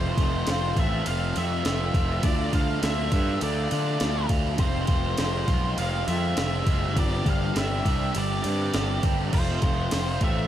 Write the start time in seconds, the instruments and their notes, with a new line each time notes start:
Already playing: picked electric bass F1, overdriven electric guitar F2 C3 F3 A3 C4 F4, lead electric guitar C5
0.17 picked electric bass F1, overdriven electric guitar A3 C4 F4, kick, ride
0.22 overdriven electric guitar F3
0.47 picked electric bass F1, overdriven electric guitar F3 A3 C4, snare, ride
0.51 overdriven electric guitar F4
0.77 picked electric bass A1, overdriven electric guitar F3 A3 C4 F4, lead electric guitar E5, kick, ride
1.06 picked electric bass F1, overdriven electric guitar F2 C3 F3 A3 C4 F4, lead electric guitar F5, ride
1.35 picked electric bass F2, overdriven electric guitar F3 A3 C4 F4, lead electric guitar E5, ride
1.65 picked electric bass F1, overdriven electric guitar F3 A3 C4 F4, snare, ride
1.94 picked electric bass F1, overdriven electric guitar F3 A3 C4 F4, kick, ride
2.23 picked electric bass D2, overdriven electric guitar D3 A3 D4 F4, lead electric guitar D5, kick, ride
2.52 picked electric bass D2, overdriven electric guitar A3 D4 F4, lead electric guitar F5, kick, ride
2.82 picked electric bass D2, overdriven electric guitar D3 A3 D4 F4, lead electric guitar E5, snare, ride
3.11 picked electric bass G2, overdriven electric guitar A3 D4 F4, kick, ride
3.40 picked electric bass D2, overdriven electric guitar D3 A3 D4 F4, lead electric guitar D5, ride
3.70 picked electric bass D3, overdriven electric guitar A3 D4 F4, ride
4.00 picked electric bass D2, overdriven electric guitar D3 A3 D4, snare, ride
4.04 overdriven electric guitar F4
4.29 picked electric bass D2, overdriven electric guitar A3 D4 F4, kick, ride
4.58 picked electric bass F1, overdriven electric guitar F2 C3 F3 G#3 C4, lead electric guitar C5, kick, ride
4.63 overdriven electric guitar F4
4.87 picked electric bass F1, overdriven electric guitar G#3 C4 F4, kick, ride
4.92 overdriven electric guitar F3
5.18 picked electric bass F1, overdriven electric guitar F3 G#3 C4, snare, ride
5.22 overdriven electric guitar F4
5.48 picked electric bass B1, overdriven electric guitar F3 G#3 C4 F4, kick, ride
5.78 picked electric bass F1, overdriven electric guitar F2 C3 F3 G#3 C4 F4, lead electric guitar F5, ride
6.08 picked electric bass F2, overdriven electric guitar F3 G#3 C4 F4, lead electric guitar E5, ride
6.37 picked electric bass F1, overdriven electric guitar F3 G#3 C4 F4, snare, ride
6.65 picked electric bass F#1, overdriven electric guitar F3 G#3 C4 F4, kick, ride
6.94 picked electric bass G1, overdriven electric guitar G2 D3 G3 C4 D4 G4, kick, ride
6.99 lead electric guitar D5
7.25 picked electric bass G1, overdriven electric guitar G3 C4 D4 G4, kick, ride
7.30 lead electric guitar F5
7.54 picked electric bass G1, overdriven electric guitar G3 C4 D4 G4, snare, ride
7.58 lead electric guitar E5
7.84 picked electric bass C2, overdriven electric guitar G3 C4 D4 G4, kick, ride
8.11 overdriven electric guitar G2 D3 G3 C4 D4 G4, ride
8.16 picked electric bass G1, lead electric guitar D5
8.42 picked electric bass G2, overdriven electric guitar G3 C4 D4 G4, ride
8.73 picked electric bass G1, overdriven electric guitar G3 C4 D4 G4, snare, ride
9.02 picked electric bass G1, overdriven electric guitar G3 C4 D4 G4, kick, ride
9.32 picked electric bass F1, overdriven electric guitar F2 C3 F3 A3 C4 F4, lead electric guitar C5, kick, crash
9.62 picked electric bass F1, overdriven electric guitar F3 A3 C4 F4, kick, ride
9.91 picked electric bass F1, overdriven electric guitar F3 A3 C4, snare, ride
9.95 overdriven electric guitar F4
10.21 picked electric bass A1, overdriven electric guitar A3 C4 F4, lead electric guitar E5, kick, ride
10.25 overdriven electric guitar F3